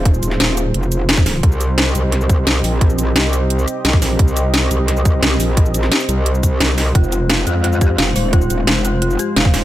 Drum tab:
HH |x-x-x-x-x-x-x-o-|x-x-x-x-x-x-x-o-|x-x-x-x-x-x-x-o-|x-x-x-x-x-x-x-o-|
SH |-xx---x--xx--xx-|-xx---x--xx---x-|-xx---x--xx---x-|-xx---x--xx---x-|
SD |---oo-------o-o-|----o---o---o---|----o-------o-o-|----o---o---o---|
BD |o------------o--|o---------o-----|o------------o--|o---------o-----|

HH |x-x-x-x-x-x-x-o-|x-x-x-x-x-x-x-o-|x-x-x-x-x-x-x-o-|
SH |-xx--xx--xx---x-|-xx---x--xx---x-|-xx---x--xx---x-|
SD |---oo-------o-o-|----o---o---o---|----o-------o-o-|
BD |o---------o-----|o---------o-----|o------------o--|